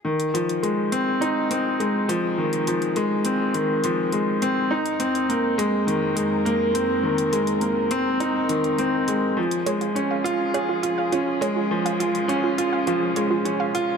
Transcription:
<<
  \new Staff \with { instrumentName = "Synth arpeggio sound" } { \time 4/4 \key f \minor \tempo 4 = 103 r1 | r1 | r1 | r1 |
f'16 r16 des''16 f'16 r16 f''16 f'16 r16 des''16 f'16 r16 f''16 f'16 r16 des''16 f'16 | r16 f''16 f'16 r16 des''16 f'16 r16 f''16 f'16 r16 des''16 f'16 r16 f''16 f'16 r16 | }
  \new Staff \with { instrumentName = "String section" } { \time 4/4 \key f \minor <f ees' aes'>1~ | <f ees' aes'>1 | <f, aes c' bes'>1~ | <f, aes c' bes'>1 |
<f des' aes'>1~ | <f des' aes'>1 | }
  \new Staff \with { instrumentName = "Upright piano" } { \time 4/4 \key f \minor ees8 f8 aes8 c'8 ees'8 c'8 aes8 f8 | ees8 f8 aes8 c'8 ees8 f8 aes8 c'8 | ees'8 c'8 bes8 aes8 ees8 aes8 bes8 c'8 | ees8 aes8 bes8 c'8 ees'8 ees8 c'8 aes8 |
f8 aes8 des'8 f'8 aes'8 f'8 des'8 aes8 | f8 f'8 des'8 f'8 f8 aes8 des'8 f'8 | }
  \new DrumStaff \with { instrumentName = "Drums" } \drummode { \time 4/4 r16 hh16 hh16 hh16 hh8 hh8 hh8 hh8 hh8 hh8 | r16 hh16 hh16 hh16 hh8 hh8 hh8 hh8 hh8 hh8 | r16 hh16 hh16 hh16 hh8 hh8 hh8 hh8 hh8 hh8 | r16 hh16 hh16 hh16 hh8 hh8 hh8 hh16 hh16 hh8 hh8 |
r16 hh16 hh16 hh16 hh8 hh8 hh8 hh8 hh8 hh8 | r16 hh16 hh16 hh16 hh8 hh8 hh8 hh8 hh8 hh8 | }
>>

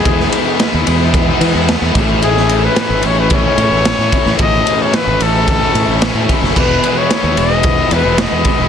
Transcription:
<<
  \new Staff \with { instrumentName = "Trumpet" } { \time 4/4 \key e \major \tempo 4 = 111 gis'8 r2. r8 | gis'8. b'8. cis''16 b'16 cis''2 | dis''8. cis''16 b'8 a'2 r8 | b'8. cis''8. dis''4 b'8 dis''4 | }
  \new Staff \with { instrumentName = "Overdriven electric guitar" } { \time 4/4 \key e \major <e gis b e'>8 <e gis b e'>8 <e gis b e'>16 <gis b e'>16 <e gis b e'>16 <gis b e'>8 <gis b e'>16 <e gis b e'>16 <gis b e'>16 <e gis b e'>8 <a, e a cis' e'>16 <a cis' e'>16 | <a, e a cis' e'>8 <e a cis' e'>8 <a, e a cis' e'>16 <a cis' e'>16 <e a cis' e'>16 <a cis' e'>8 <a cis' e'>16 <e a cis' e'>16 <a cis' e'>16 <a, e a cis' e'>8 <e a cis' e'>16 <a cis' e'>16 | <a, e a cis' e'>8 <e a cis' e'>8 <a, e a cis' e'>16 <a cis' e'>16 <e a cis' e'>16 <a cis' e'>8 <a cis' e'>16 <e a cis' e'>16 <a cis' e'>16 <a, e a cis' e'>8 <e a cis' e'>16 <a cis' e'>16 | <e gis b e'>8 <e gis b e'>8 <e gis b e'>16 <gis b e'>16 <e gis b e'>16 <gis b e'>8 <gis b e'>16 <e gis b e'>16 <gis b e'>16 <e gis b e'>8 <e gis b e'>16 <gis b e'>16 | }
  \new Staff \with { instrumentName = "Distorted electric guitar" } { \clef bass \time 4/4 \key e \major <e, gis b>8 b,8 gis4 b8 gis8 b8 a,8 | a,8 e4 e8 cis'4 cis'8 e8 | a,8 e4 e8 cis'4 cis'8 e8 | e,8 b,8 gis4 b8 gis8 b4 | }
  \new Staff \with { instrumentName = "Fingered electric bass" } { \clef bass \time 4/4 \key e \major e,8 r8. dis,16 e,4 e16 e,8 e,16 a,,8~ | a,,4~ a,,16 gis,,16 a,,4 a,16 a,,8 a,16 r16 a,,16 | a,,8 r8. gis,,16 a,,4 a,16 a,,8 a,16 r16 fis,,16 | e,,8 r8. dis,16 e,,4 e,16 e,,8 e,16 r16 e,,16 | }
  \new DrumStaff \with { instrumentName = "Drums" } \drummode { \time 4/4 <bd cymr>16 sn16 cymr8 <cymr sn>8 cymr8 <bd cymr>8 cymr8 <cymr sn>16 sn16 <bd cymr>8 | cymr16 sn16 cymr8 <cymr sn>8 cymr8 <bd cymr>8 cymr8 <cymr sn>16 sn16 <bd cymr>16 sn16 | <bd cymr>8 cymr8 <cymr sn>8 cymr8 <bd cymr>8 cymr8 <cymr sn>8 <bd cymr>16 sn16 | <cymc bd>8 cymr8 <cymr sn>8 cymr8 <bd cymr>8 cymr8 <cymr sn>8 <bd cymr>8 | }
>>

